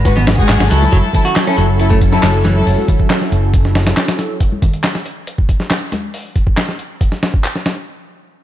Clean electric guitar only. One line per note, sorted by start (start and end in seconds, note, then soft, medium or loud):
0.16 0.24 B3 medium
0.70 0.81 F#3 medium
0.92 0.97 F#3 loud
1.25 1.35 F#4 medium
1.36 1.46 F#3 medium
1.47 1.55 C#4 medium
1.57 1.66 F#3 medium
1.90 1.98 A3 medium
2.44 2.55 E3 medium